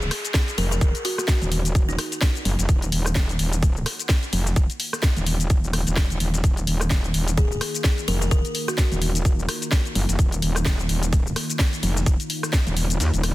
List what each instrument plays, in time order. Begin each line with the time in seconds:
Already playing: ambient pad D#4 A#4 F5 F#5, downlifter
0.02 shaker
0.11 cross-stick, snare, closed hi-hat, open hi-hat
0.25 closed hi-hat, shaker
0.34 kick, snare, closed hi-hat, shaker
0.48 closed hi-hat, shaker
0.58 wobble bass F1, kalimba A#4, closed hi-hat, open hi-hat
0.71 kalimba A#4, snare, shaker
0.81 wobble bass D#1, kick, closed hi-hat, shaker
0.95 closed hi-hat, shaker
1.05 kalimba F#4, closed hi-hat, open hi-hat
1.18 kalimba F#4, cross-stick, snare, shaker
1.28 kick, snare, closed hi-hat, shaker
1.42 wobble bass D#1, closed hi-hat, shaker
1.52 closed hi-hat, open hi-hat
1.65 closed hi-hat, shaker
1.75 wobble bass D#1, kick, closed hi-hat, shaker
1.89 kalimba D#4, shaker
1.99 cross-stick, snare, closed hi-hat, open hi-hat
2.12 closed hi-hat, shaker
2.21 kick, snare, closed hi-hat, shaker
2.35 closed hi-hat, shaker
2.45 wobble bass F#1, closed hi-hat, open hi-hat
2.59 wobble bass F1, snare, closed hi-hat, shaker
2.69 wobble bass D#1, kick, closed hi-hat, shaker
2.82 closed hi-hat, shaker
2.92 wobble bass D#1, closed hi-hat, open hi-hat
3.06 cross-stick, closed hi-hat, shaker
3.15 kick, snare, closed hi-hat, shaker
3.29 closed hi-hat, shaker
3.39 wobble bass D#1, closed hi-hat, open hi-hat
3.53 closed hi-hat, shaker
3.63 kick, closed hi-hat, shaker
3.77 shaker
3.86 cross-stick, snare, closed hi-hat, open hi-hat
3.99 closed hi-hat, shaker
4.09 kick, snare, closed hi-hat, shaker
4.23 closed hi-hat, shaker
4.33 wobble bass F1, closed hi-hat, open hi-hat
4.46 snare, shaker
4.56 wobble bass D#1, kick, closed hi-hat, shaker
4.70 closed hi-hat, shaker
4.80 closed hi-hat, open hi-hat
4.93 cross-stick, snare, shaker
5.03 kick, snare, closed hi-hat, shaker
5.17 wobble bass D#1, closed hi-hat, shaker
5.26 closed hi-hat, open hi-hat
5.40 closed hi-hat, shaker
5.50 wobble bass D#1, kick, closed hi-hat, shaker
5.64 shaker
5.73 cross-stick, snare, closed hi-hat, open hi-hat
5.87 wobble bass D#1, closed hi-hat, shaker
5.96 kick, snare, closed hi-hat, shaker
6.10 wobble bass D#1, closed hi-hat, shaker
6.20 wobble bass D#1, closed hi-hat, open hi-hat
6.34 snare, closed hi-hat, shaker
6.44 wobble bass D#1, ambient pad A#5, kick, closed hi-hat, shaker
6.57 closed hi-hat, shaker
6.67 wobble bass D#1, closed hi-hat, open hi-hat
6.81 cross-stick, closed hi-hat, shaker
6.90 kick, snare, closed hi-hat, shaker
7.04 closed hi-hat, shaker
7.14 wobble bass D#1, closed hi-hat, open hi-hat
7.28 closed hi-hat, shaker
7.37 kalimba G#4, kick, closed hi-hat, shaker
7.52 shaker
7.61 cross-stick, snare, closed hi-hat, open hi-hat
7.74 closed hi-hat, shaker
7.84 kick, snare, closed hi-hat, shaker
7.98 closed hi-hat, shaker
8.08 wobble bass F1, kalimba A#4, closed hi-hat, open hi-hat
8.21 kalimba A#4, snare, shaker
8.31 wobble bass D#1, kalimba A#4, kick, closed hi-hat, shaker
8.45 closed hi-hat, shaker
8.55 closed hi-hat, open hi-hat
8.68 kalimba F#4, cross-stick, snare, shaker
8.78 kick, snare, closed hi-hat, shaker
8.92 wobble bass D#1, closed hi-hat, shaker
9.02 closed hi-hat, open hi-hat
9.15 closed hi-hat, shaker
9.25 wobble bass D#1, kick, closed hi-hat, shaker
9.39 shaker
9.49 cross-stick, snare, closed hi-hat, open hi-hat
9.62 closed hi-hat, shaker
9.71 kick, snare, closed hi-hat, shaker
9.85 closed hi-hat, shaker
9.95 wobble bass F#1, closed hi-hat, open hi-hat
10.09 wobble bass F1, snare, closed hi-hat, shaker
10.19 wobble bass D#1, kick, closed hi-hat, shaker
10.32 closed hi-hat, shaker
10.42 wobble bass D#1, closed hi-hat, open hi-hat
10.56 cross-stick, closed hi-hat, shaker
10.65 kick, snare, closed hi-hat, shaker
10.79 closed hi-hat, shaker
10.89 wobble bass D#1, closed hi-hat, open hi-hat
11.03 closed hi-hat, shaker
11.13 kick, closed hi-hat, shaker
11.27 shaker
11.36 cross-stick, snare, closed hi-hat, open hi-hat
11.50 closed hi-hat, shaker
11.59 kick, snare, closed hi-hat, shaker
11.73 closed hi-hat, shaker
11.83 wobble bass F1, closed hi-hat, open hi-hat
11.97 snare, shaker
12.06 wobble bass D#1, kick, closed hi-hat, shaker
12.20 closed hi-hat, shaker
12.30 closed hi-hat, open hi-hat
12.43 cross-stick, snare, closed hi-hat, shaker
12.53 kick, snare, closed hi-hat, shaker
12.67 wobble bass D#1, closed hi-hat, shaker
12.77 closed hi-hat, open hi-hat
12.90 closed hi-hat, shaker
13.00 wobble bass D#2, snare, closed hi-hat, shaker
13.14 wobble bass D#1, closed hi-hat, shaker
13.23 cross-stick, snare, closed hi-hat, open hi-hat